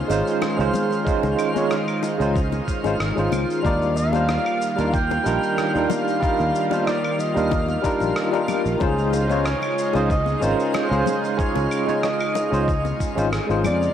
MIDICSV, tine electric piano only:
0, 0, Header, 1, 2, 480
1, 0, Start_track
1, 0, Tempo, 645161
1, 793, Time_signature, 4, 2, 24, 8
1, 10368, End_track
2, 0, Start_track
2, 0, Title_t, "Tine electric piano"
2, 0, Program_c, 0, 4
2, 60, Note_on_c, 0, 56, 95
2, 66, Note_on_c, 0, 61, 82
2, 74, Note_on_c, 0, 63, 90
2, 80, Note_on_c, 0, 65, 88
2, 90, Note_on_c, 0, 72, 105
2, 403, Note_off_c, 0, 56, 0
2, 406, Note_off_c, 0, 61, 0
2, 410, Note_off_c, 0, 63, 0
2, 413, Note_off_c, 0, 65, 0
2, 418, Note_off_c, 0, 72, 0
2, 423, Note_on_c, 0, 56, 82
2, 432, Note_on_c, 0, 61, 71
2, 439, Note_on_c, 0, 63, 73
2, 446, Note_on_c, 0, 65, 75
2, 452, Note_on_c, 0, 72, 86
2, 758, Note_off_c, 0, 56, 0
2, 762, Note_off_c, 0, 61, 0
2, 766, Note_off_c, 0, 63, 0
2, 769, Note_off_c, 0, 65, 0
2, 772, Note_off_c, 0, 72, 0
2, 776, Note_on_c, 0, 56, 88
2, 782, Note_on_c, 0, 61, 77
2, 790, Note_on_c, 0, 63, 74
2, 795, Note_on_c, 0, 65, 75
2, 804, Note_on_c, 0, 72, 93
2, 1121, Note_off_c, 0, 56, 0
2, 1124, Note_off_c, 0, 61, 0
2, 1128, Note_off_c, 0, 63, 0
2, 1130, Note_off_c, 0, 65, 0
2, 1135, Note_off_c, 0, 72, 0
2, 1145, Note_on_c, 0, 56, 77
2, 1152, Note_on_c, 0, 61, 72
2, 1159, Note_on_c, 0, 63, 73
2, 1168, Note_on_c, 0, 65, 73
2, 1174, Note_on_c, 0, 73, 92
2, 1285, Note_off_c, 0, 56, 0
2, 1289, Note_off_c, 0, 61, 0
2, 1292, Note_off_c, 0, 63, 0
2, 1297, Note_off_c, 0, 65, 0
2, 1300, Note_off_c, 0, 73, 0
2, 1625, Note_on_c, 0, 56, 85
2, 1632, Note_on_c, 0, 61, 79
2, 1641, Note_on_c, 0, 63, 78
2, 1645, Note_on_c, 0, 65, 75
2, 1652, Note_on_c, 0, 72, 91
2, 1766, Note_off_c, 0, 56, 0
2, 1769, Note_off_c, 0, 61, 0
2, 1773, Note_off_c, 0, 63, 0
2, 1776, Note_off_c, 0, 65, 0
2, 1779, Note_off_c, 0, 72, 0
2, 2110, Note_on_c, 0, 56, 90
2, 2114, Note_on_c, 0, 61, 84
2, 2122, Note_on_c, 0, 63, 80
2, 2131, Note_on_c, 0, 65, 81
2, 2136, Note_on_c, 0, 72, 98
2, 2197, Note_off_c, 0, 56, 0
2, 2199, Note_off_c, 0, 61, 0
2, 2203, Note_off_c, 0, 63, 0
2, 2207, Note_off_c, 0, 65, 0
2, 2210, Note_off_c, 0, 72, 0
2, 2346, Note_on_c, 0, 56, 72
2, 2355, Note_on_c, 0, 61, 66
2, 2361, Note_on_c, 0, 63, 67
2, 2370, Note_on_c, 0, 65, 67
2, 2376, Note_on_c, 0, 72, 78
2, 2679, Note_off_c, 0, 56, 0
2, 2684, Note_off_c, 0, 61, 0
2, 2687, Note_off_c, 0, 63, 0
2, 2691, Note_off_c, 0, 65, 0
2, 2694, Note_off_c, 0, 72, 0
2, 2697, Note_on_c, 0, 55, 85
2, 2704, Note_on_c, 0, 62, 79
2, 2711, Note_on_c, 0, 63, 80
2, 2718, Note_on_c, 0, 65, 78
2, 2726, Note_on_c, 0, 70, 97
2, 3041, Note_off_c, 0, 55, 0
2, 3045, Note_off_c, 0, 62, 0
2, 3048, Note_off_c, 0, 63, 0
2, 3052, Note_off_c, 0, 65, 0
2, 3056, Note_off_c, 0, 70, 0
2, 3066, Note_on_c, 0, 55, 78
2, 3070, Note_on_c, 0, 62, 74
2, 3079, Note_on_c, 0, 63, 73
2, 3084, Note_on_c, 0, 65, 68
2, 3093, Note_on_c, 0, 72, 90
2, 3206, Note_off_c, 0, 55, 0
2, 3208, Note_off_c, 0, 62, 0
2, 3213, Note_off_c, 0, 63, 0
2, 3215, Note_off_c, 0, 65, 0
2, 3220, Note_off_c, 0, 72, 0
2, 3542, Note_on_c, 0, 55, 89
2, 3550, Note_on_c, 0, 62, 78
2, 3558, Note_on_c, 0, 63, 77
2, 3565, Note_on_c, 0, 65, 80
2, 3572, Note_on_c, 0, 70, 98
2, 3684, Note_off_c, 0, 55, 0
2, 3688, Note_off_c, 0, 62, 0
2, 3692, Note_off_c, 0, 63, 0
2, 3696, Note_off_c, 0, 65, 0
2, 3699, Note_off_c, 0, 70, 0
2, 3897, Note_on_c, 0, 55, 98
2, 3904, Note_on_c, 0, 62, 85
2, 3911, Note_on_c, 0, 63, 83
2, 3917, Note_on_c, 0, 65, 82
2, 3926, Note_on_c, 0, 70, 104
2, 4241, Note_off_c, 0, 55, 0
2, 4245, Note_off_c, 0, 62, 0
2, 4248, Note_off_c, 0, 63, 0
2, 4251, Note_off_c, 0, 65, 0
2, 4256, Note_off_c, 0, 70, 0
2, 4266, Note_on_c, 0, 55, 76
2, 4272, Note_on_c, 0, 62, 73
2, 4280, Note_on_c, 0, 63, 71
2, 4287, Note_on_c, 0, 65, 68
2, 4295, Note_on_c, 0, 70, 87
2, 4599, Note_off_c, 0, 55, 0
2, 4602, Note_off_c, 0, 62, 0
2, 4606, Note_off_c, 0, 63, 0
2, 4610, Note_off_c, 0, 65, 0
2, 4614, Note_off_c, 0, 70, 0
2, 4614, Note_on_c, 0, 55, 88
2, 4623, Note_on_c, 0, 62, 78
2, 4628, Note_on_c, 0, 63, 76
2, 4636, Note_on_c, 0, 65, 77
2, 4643, Note_on_c, 0, 70, 89
2, 4960, Note_off_c, 0, 55, 0
2, 4964, Note_off_c, 0, 62, 0
2, 4967, Note_off_c, 0, 63, 0
2, 4971, Note_off_c, 0, 65, 0
2, 4974, Note_off_c, 0, 70, 0
2, 4983, Note_on_c, 0, 55, 81
2, 4989, Note_on_c, 0, 62, 74
2, 4996, Note_on_c, 0, 63, 75
2, 5005, Note_on_c, 0, 65, 75
2, 5013, Note_on_c, 0, 72, 88
2, 5125, Note_off_c, 0, 55, 0
2, 5128, Note_off_c, 0, 62, 0
2, 5131, Note_off_c, 0, 63, 0
2, 5135, Note_off_c, 0, 65, 0
2, 5139, Note_off_c, 0, 72, 0
2, 5463, Note_on_c, 0, 55, 90
2, 5472, Note_on_c, 0, 62, 83
2, 5479, Note_on_c, 0, 63, 84
2, 5487, Note_on_c, 0, 65, 79
2, 5493, Note_on_c, 0, 70, 94
2, 5605, Note_off_c, 0, 55, 0
2, 5609, Note_off_c, 0, 62, 0
2, 5612, Note_off_c, 0, 63, 0
2, 5616, Note_off_c, 0, 65, 0
2, 5620, Note_off_c, 0, 70, 0
2, 5819, Note_on_c, 0, 55, 94
2, 5828, Note_on_c, 0, 62, 91
2, 5833, Note_on_c, 0, 63, 90
2, 5840, Note_on_c, 0, 65, 84
2, 5849, Note_on_c, 0, 70, 105
2, 6162, Note_off_c, 0, 55, 0
2, 6167, Note_off_c, 0, 62, 0
2, 6169, Note_off_c, 0, 63, 0
2, 6173, Note_off_c, 0, 65, 0
2, 6177, Note_off_c, 0, 70, 0
2, 6186, Note_on_c, 0, 55, 79
2, 6195, Note_on_c, 0, 62, 76
2, 6200, Note_on_c, 0, 63, 75
2, 6207, Note_on_c, 0, 65, 75
2, 6214, Note_on_c, 0, 70, 86
2, 6519, Note_off_c, 0, 55, 0
2, 6524, Note_off_c, 0, 62, 0
2, 6526, Note_off_c, 0, 63, 0
2, 6530, Note_off_c, 0, 65, 0
2, 6533, Note_off_c, 0, 70, 0
2, 6542, Note_on_c, 0, 56, 87
2, 6550, Note_on_c, 0, 61, 79
2, 6555, Note_on_c, 0, 63, 79
2, 6562, Note_on_c, 0, 65, 81
2, 6570, Note_on_c, 0, 72, 96
2, 6884, Note_off_c, 0, 56, 0
2, 6888, Note_off_c, 0, 61, 0
2, 6890, Note_off_c, 0, 63, 0
2, 6894, Note_off_c, 0, 65, 0
2, 6898, Note_off_c, 0, 72, 0
2, 6901, Note_on_c, 0, 56, 83
2, 6908, Note_on_c, 0, 61, 78
2, 6917, Note_on_c, 0, 63, 73
2, 6924, Note_on_c, 0, 65, 77
2, 6932, Note_on_c, 0, 73, 88
2, 7044, Note_off_c, 0, 56, 0
2, 7047, Note_off_c, 0, 61, 0
2, 7052, Note_off_c, 0, 63, 0
2, 7055, Note_off_c, 0, 65, 0
2, 7059, Note_off_c, 0, 73, 0
2, 7386, Note_on_c, 0, 56, 89
2, 7392, Note_on_c, 0, 61, 85
2, 7400, Note_on_c, 0, 63, 85
2, 7407, Note_on_c, 0, 65, 85
2, 7413, Note_on_c, 0, 72, 101
2, 7526, Note_off_c, 0, 56, 0
2, 7529, Note_off_c, 0, 61, 0
2, 7533, Note_off_c, 0, 63, 0
2, 7536, Note_off_c, 0, 65, 0
2, 7540, Note_off_c, 0, 72, 0
2, 7735, Note_on_c, 0, 56, 97
2, 7744, Note_on_c, 0, 61, 91
2, 7751, Note_on_c, 0, 63, 88
2, 7757, Note_on_c, 0, 65, 89
2, 7762, Note_on_c, 0, 72, 111
2, 8080, Note_off_c, 0, 56, 0
2, 8085, Note_off_c, 0, 61, 0
2, 8088, Note_off_c, 0, 63, 0
2, 8091, Note_off_c, 0, 65, 0
2, 8094, Note_off_c, 0, 72, 0
2, 8103, Note_on_c, 0, 56, 81
2, 8110, Note_on_c, 0, 61, 70
2, 8117, Note_on_c, 0, 63, 69
2, 8125, Note_on_c, 0, 65, 76
2, 8132, Note_on_c, 0, 72, 90
2, 8437, Note_off_c, 0, 56, 0
2, 8441, Note_off_c, 0, 61, 0
2, 8444, Note_off_c, 0, 63, 0
2, 8449, Note_off_c, 0, 65, 0
2, 8452, Note_off_c, 0, 72, 0
2, 8459, Note_on_c, 0, 56, 91
2, 8465, Note_on_c, 0, 61, 78
2, 8472, Note_on_c, 0, 63, 80
2, 8479, Note_on_c, 0, 65, 82
2, 8486, Note_on_c, 0, 73, 90
2, 8802, Note_off_c, 0, 56, 0
2, 8805, Note_off_c, 0, 61, 0
2, 8809, Note_off_c, 0, 63, 0
2, 8812, Note_off_c, 0, 65, 0
2, 8816, Note_off_c, 0, 73, 0
2, 8823, Note_on_c, 0, 56, 85
2, 8829, Note_on_c, 0, 61, 74
2, 8838, Note_on_c, 0, 63, 78
2, 8846, Note_on_c, 0, 65, 76
2, 8852, Note_on_c, 0, 73, 93
2, 8965, Note_off_c, 0, 56, 0
2, 8968, Note_off_c, 0, 61, 0
2, 8972, Note_off_c, 0, 63, 0
2, 8976, Note_off_c, 0, 65, 0
2, 8979, Note_off_c, 0, 73, 0
2, 9300, Note_on_c, 0, 56, 89
2, 9308, Note_on_c, 0, 61, 81
2, 9314, Note_on_c, 0, 63, 80
2, 9321, Note_on_c, 0, 65, 81
2, 9329, Note_on_c, 0, 72, 99
2, 9443, Note_off_c, 0, 56, 0
2, 9447, Note_off_c, 0, 61, 0
2, 9450, Note_off_c, 0, 63, 0
2, 9454, Note_off_c, 0, 65, 0
2, 9458, Note_off_c, 0, 72, 0
2, 9784, Note_on_c, 0, 56, 97
2, 9791, Note_on_c, 0, 61, 91
2, 9800, Note_on_c, 0, 63, 83
2, 9805, Note_on_c, 0, 65, 87
2, 9812, Note_on_c, 0, 72, 98
2, 9874, Note_off_c, 0, 56, 0
2, 9877, Note_off_c, 0, 61, 0
2, 9882, Note_off_c, 0, 63, 0
2, 9884, Note_off_c, 0, 65, 0
2, 9888, Note_off_c, 0, 72, 0
2, 10022, Note_on_c, 0, 56, 71
2, 10029, Note_on_c, 0, 61, 64
2, 10038, Note_on_c, 0, 63, 68
2, 10043, Note_on_c, 0, 65, 66
2, 10051, Note_on_c, 0, 72, 83
2, 10357, Note_off_c, 0, 56, 0
2, 10361, Note_off_c, 0, 61, 0
2, 10365, Note_off_c, 0, 63, 0
2, 10368, Note_off_c, 0, 65, 0
2, 10368, Note_off_c, 0, 72, 0
2, 10368, End_track
0, 0, End_of_file